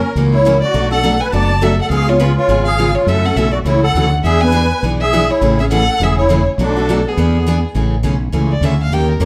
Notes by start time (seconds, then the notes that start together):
Already playing: C#4 A#4
0.15 C#2 C#3 E3 A#3 C#4 F#4
0.32 E4 C#5
0.45 C#3 E3 A#3 C#4 F#4
0.62 F#4 D5
0.74 B1 B2 F#3 A3 D4 F#4
0.91 A3 D4 F#4 A4 F#5
1.03 B2 F#3 A3 D4 F#4
1.21 B4 G#5
1.32 F#1 B2 F#3 A3 D4 F#4 D5 A5
1.61 B2 F#3 A3 D4 F#4 A4 E5
1.79 A4 F#5
1.90 C#2 C#3 G#3 B3 F4 G#4 F5
2.08 B3 F4 G#4 C#5
2.19 C#3 G#3 B3 F4 G#4 B4
2.38 F4 C#5
2.48 G#1 C#3 G#3 B3 F4 G#4
2.65 G#4 F5
2.78 C#3 G#3 B3 F4 G#4
2.95 F4 C#5
3.06 F#2 C#3 E3 A3 C#4 F#4 A4 E5
3.24 A3 C#4 F#4 A4 F#5
3.36 B1 C#3 E3 A3 C#4 F#4 A4 E5
3.53 F#4 D5
3.65 C#2 C#3 E3 A3 C#4 E4 F#4 C#5
3.83 A4 F#5
3.95 D2 C#3 E3 A3 C#4 F#4
4.23 E2 E3 B3 D4 G#4 E5
4.41 B3 D4 G#4 B4 G#5
4.52 E3 B3 D4 G#4
4.83 B1 E3 B3 D4 G#4
5.01 G#4 E5
5.13 E3 B3 D4 G#4
5.29 E4 C#5
5.41 A1 C#3 E3 A3 C#4 G#4
5.59 A3 C#4 G#4 E5
5.71 C#3 E3 A3 C#4 G#4 A4 F#5
6.00 E1 C#3 E3 A3 C#4 G#4 E5
6.19 E4 C#5
6.29 C#3 E3 A3 C#4 G#4
6.58 B1 B2 F#3 A3 D4 F#4
6.62 A4
6.76 A3 D4 F#4
6.89 B2 F#3 A3 D4 F#4
7.06 B3 G#4
7.17 E2 E3 B3 D4 G#4
7.47 E3 B3 D4 G#4
7.74 A1 C#3 E3 A3 C#4 G#4
8.03 B1 C#3 E3 A3 C#4 G#4
8.32 C#2 C#3 E3 A3 C#4 G#4
8.52 D5
8.61 D2 C#3 E3 A3 C#4 G#4
8.65 E5
8.83 F5
8.90 D#2 D#3 A#3 C#4 G4 A#4 G5
9.11 A#4
9.20 F2 D#3 A#3 C#4 G4 A#4 C#5